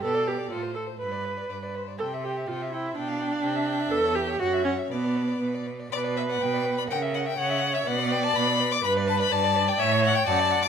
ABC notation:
X:1
M:2/4
L:1/16
Q:1/4=124
K:C
V:1 name="Violin"
d4 c4 | B4 d2 c2 | c4 c4 | d4 e4- |
[K:Bm] e4 c4 | d6 z2 | d2 e f g3 b | g2 f g f3 e |
f2 g a b3 d' | b2 a b a3 g | e2 f g a3 d' |]
V:2 name="Violin"
B d B d A c A c | B d B d B d B d | g e g e g e g e | g f g f g e g e |
[K:Bm] B c B c f e f e | B d B d B d B d | B d B d B d B d | f e f e f e f e |
B d B d B d B d | B d B d B d B d | e c e c f d f d |]
V:3 name="Viola"
A2 G2 F2 A2 | B6 z2 | A2 G2 F2 E2 | D8 |
[K:Bm] A2 G2 F2 C2 | B,4 z4 | B8 | ^A4 c4 |
d8 | B4 d4 | c4 d4 |]
V:4 name="Cello" clef=bass
B,,4 A,,4 | G,,4 G,,4 | C,4 C,4 | B,,4 C,4 |
[K:Bm] E,,4 F,,4 | B,,4 B,,4 | B,,4 B,,4 | C,4 C,4 |
B,,4 B,,4 | G,,4 G,,4 | A,,4 F,,4 |]